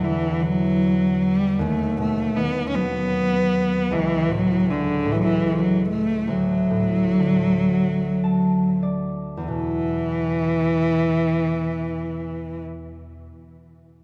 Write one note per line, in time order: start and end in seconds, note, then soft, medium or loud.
0.00 1.65 E2 soft
0.00 1.65 D3 soft
0.00 0.44 E3 medium
0.40 1.65 E3 soft
0.40 1.24 F#3 medium
1.23 1.63 G3 medium
1.59 3.95 D#2 medium
1.59 1.99 A3 medium
1.97 2.42 B2 soft
1.97 2.38 A3 medium
2.36 3.95 D#3 soft
2.36 2.68 B3 medium
2.69 2.77 C#4 medium
2.75 3.95 F#3 soft
2.75 3.94 B3 medium
3.91 6.33 C#2 medium
3.91 4.33 E3 medium
4.28 5.04 A2 soft
4.28 4.72 F#3 medium
4.66 6.34 C#4 soft
4.70 5.13 D3 medium
5.05 6.33 A2 soft
5.12 5.16 E3 medium
5.12 5.25 F#3 soft
5.24 5.49 E3 medium
5.48 5.87 F#3 medium
5.88 6.30 A3 medium
6.28 9.48 D2 soft
6.28 8.82 F#3 medium
6.70 7.24 A2 soft
7.19 9.48 D3 soft
7.69 9.48 F#3 soft
8.24 9.69 A5 soft
8.83 10.67 D5 soft
9.37 13.27 E2 soft
9.44 13.38 B2 soft
9.44 12.63 E3 medium